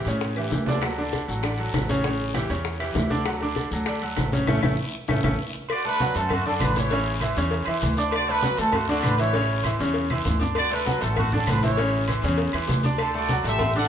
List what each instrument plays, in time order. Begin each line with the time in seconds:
0.05 upright bass A2, grand piano C#3 C#4 C#5, high bongo, high conga, high timbale, short guiro
0.21 high bongo, high conga, long guiro
0.35 grand piano E3 E4 G4, high conga, high timbale, claves
0.50 upright bass D2, grand piano E3 E4 G4, high bongo, low bongo, high conga, high timbale, short guiro
0.66 grand piano D3 D4 D5, high bongo, high conga, low timbale, short guiro
0.82 grand piano F#3 F#4 A4, high bongo, high conga, high timbale, long guiro, claves
0.98 grand piano D3 D4 D5, high bongo, high conga
1.13 high bongo, high conga, high timbale, low timbale, short guiro
1.28 upright bass A1, grand piano F#3 F#4 A4, high bongo, high conga, short guiro
1.43 grand piano D3 D4 D5, high bongo, high conga, high timbale, long guiro, claves
1.58 grand piano F#3 F#4 A4, high conga, high timbale
1.74 upright bass A1, high bongo, low bongo, high conga, high timbale, low timbale, short guiro, claves
1.89 grand piano C#3 C#4 C#5, high bongo, high conga, short guiro
2.04 grand piano C#3 C#4 C#5, high bongo, high conga, high timbale, long guiro
2.19 high bongo, high conga
2.34 grand piano E3 E4 G4, high bongo, high conga, high timbale, low timbale, short guiro, claves
2.49 upright bass E2, grand piano C#3 C#4 C#5, high bongo, high conga, high timbale, short guiro
2.65 high bongo, high conga, long guiro
2.80 grand piano E3 E4 G4, high conga, high timbale, claves
2.95 upright bass D2, grand piano E3 E4 G4, high bongo, low bongo, high conga, high timbale, low timbale, short guiro
3.10 grand piano D3 D4 D5, high bongo, high conga, short guiro
3.26 grand piano F#3 F#4 A4, high bongo, high timbale, long guiro, claves
3.41 grand piano D3 D4 D5, high bongo, high conga
3.56 high bongo, high conga, high timbale, low timbale, short guiro
3.71 upright bass D2, grand piano F#3 F#4 A4, high bongo, high conga, short guiro
3.86 grand piano D3 D4 D5, high bongo, high conga, high timbale, long guiro, claves
4.02 grand piano F#3 F#4 A4, high conga, high timbale
4.17 upright bass A1, high bongo, low bongo, high conga, high timbale, low timbale, short guiro, claves
4.32 grand piano C#3 C#4 C#5, high bongo, high conga, short guiro
4.47 upright bass A1, grand piano A3 C#4 E4, low bongo, high conga, high timbale, long guiro, claves
4.62 upright bass A1, grand piano A3 C#4 E4, low bongo, high conga, high timbale, long guiro, claves
5.08 upright bass A1, grand piano A3 C#4 E4, low bongo, high conga, high timbale, long guiro, claves
5.23 upright bass A1, grand piano A3 C#4 E4, low bongo, high conga, high timbale, long guiro, claves
5.69 trumpet section F#4 D5, cowbell, high conga, low agogo, long guiro, claves
5.84 grand piano A3 A4 A5, trumpet section D4 B4, high conga, low agogo
6.00 grand piano F#3 F#4 F#5, cowbell, high conga, short guiro
6.15 upright bass F#2, grand piano A3 A4 A5, trumpet section C#4 A4, cowbell, high conga, low agogo, short guiro
6.29 trumpet section A3 F#4, cowbell, high conga, low conga, low agogo, long guiro, claves
6.45 grand piano D3 D4 D5, trumpet section C#4 A4, high conga
6.60 upright bass A1, trumpet section D4 B4, cowbell, high conga, low timbale, low agogo, short guiro, claves
6.75 grand piano E3 E4 E5, trumpet section E4 C#5, cowbell, high conga, short guiro
6.90 grand piano C#3 C#4 C#5, cowbell, low agogo, long guiro
7.06 high conga
7.20 grand piano E3 E4 E5, cowbell, high conga, low agogo, short guiro, claves
7.35 upright bass E2, grand piano C#3 C#4 C#5, high conga, low agogo, short guiro
7.51 cowbell, high conga, long guiro
7.65 upright bass E2, grand piano E3 E4 E5, high conga, low agogo, claves
7.81 upright bass D2, cowbell, high conga, low agogo, short guiro
7.97 grand piano D4 D5 D6, cowbell, short guiro
8.11 trumpet section F#4 D5, cowbell, high conga, low agogo, long guiro, claves
8.27 grand piano A3 A4 A5, trumpet section D4 B4, high conga, low agogo
8.42 grand piano F#3 F#4 F#5, cowbell, high conga, short guiro
8.57 upright bass D2, grand piano A3 A4 A5, trumpet section C#4 A4, cowbell, high conga, low agogo, short guiro
8.72 trumpet section A3 F#4, cowbell, high conga, low conga, low agogo, long guiro, claves
8.88 grand piano D3 D4 D5, trumpet section A3 F#4, high conga
9.02 upright bass A1, trumpet section D4 B4, cowbell, high conga, low agogo, short guiro, claves
9.18 grand piano E3 E4 E5, trumpet section E4 C#5, cowbell, short guiro
9.33 grand piano C#3 C#4 C#5, cowbell, high conga, low agogo, long guiro
9.49 high conga
9.64 grand piano E3 E4 E5, cowbell, high conga, low agogo, short guiro, claves
9.79 upright bass E2, grand piano C#3 C#4 C#5, high conga, low agogo, short guiro
9.94 cowbell, high conga, long guiro
10.10 grand piano E3 E4 E5, high conga, low agogo, claves
10.25 upright bass D2, cowbell, low conga, low agogo, short guiro
10.40 grand piano D4 D5 D6, cowbell, low conga, short guiro
10.55 trumpet section F#4 D5, cowbell, high conga, low agogo, long guiro, claves
10.70 grand piano A3 A4 A5, trumpet section D4 B4, high conga, low agogo
10.85 grand piano F#3 F#4 F#5, cowbell, high conga, short guiro
11.01 upright bass A1, grand piano A3 A4 A5, trumpet section C#4 A4, cowbell, high conga, low agogo, short guiro
11.16 trumpet section A3 F#4, cowbell, high conga, low conga, low agogo, long guiro, claves
11.32 grand piano D3 D4 D5, trumpet section C#4 A4, high conga, low conga
11.47 upright bass A1, trumpet section D4 B4, cowbell, high conga, low timbale, low agogo, short guiro, claves
11.63 grand piano E3 E4 E5, trumpet section E4 C#5, cowbell, high conga, short guiro
11.77 grand piano C#3 C#4 C#5, cowbell, high conga, low agogo, long guiro
11.94 high conga
12.08 grand piano E3 E4 E5, cowbell, high conga, low agogo, short guiro, claves
12.22 upright bass E2, grand piano C#3 C#4 C#5, high conga, low agogo, short guiro
12.38 cowbell, high conga, long guiro
12.53 upright bass E2, grand piano E3 E4 E5, high conga, low agogo, claves
12.68 upright bass D2, cowbell, high conga, low timbale, low agogo, short guiro
12.83 grand piano D4 D5 D6, cowbell, high conga, short guiro
12.98 trumpet section D4 A4, cowbell, high conga, low agogo, long guiro, claves
13.13 grand piano A3 A4 A5, trumpet section F#4 D5, high conga, low agogo
13.29 grand piano F#3 F#4 F#5, cowbell, high conga, short guiro
13.43 upright bass A1, grand piano A3 A4 A5, trumpet section G4 E5, cowbell, high conga, low agogo, short guiro
13.59 cowbell, high conga, low conga, low agogo, long guiro, claves
13.75 grand piano D3 D4 D5, trumpet section A4 F#5, high conga